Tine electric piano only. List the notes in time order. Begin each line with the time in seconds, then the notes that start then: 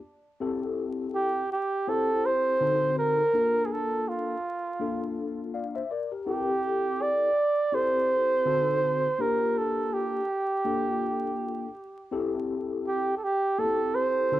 0.40 C4 E4 G4 A4
1.87 C4 E4 G4 C5
2.60 D3 C4 D#4 F#4 A4
3.33 A#3 D4 F4 A4
4.80 A#3 D4 F4 A4
5.54 D5 F5
5.75 C5 E5
5.91 A#4 D5
6.12 G4 A#4
6.26 C4 E4 G4 A4
7.72 C4 E4 G4 A4
8.45 D3 C4 D#4 F#4 A4
9.18 A#3 D4 F4 G4
10.65 A#3 D4 F4 A4
12.11 C4 E4 G4 A4
13.58 A#3 E4 G4 A4
13.65 C4
14.31 D3 C4 D#4 F#4 A4